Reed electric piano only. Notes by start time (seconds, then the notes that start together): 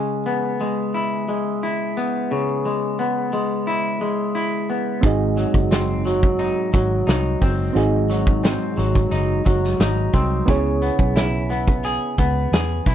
5.01 C4 D#4 F#4 G#4
5.06 D#5
7.73 C4 D#4 F#4 G#4
7.78 D#5
10.46 B3 C#4 E4 G#4
10.51 C#5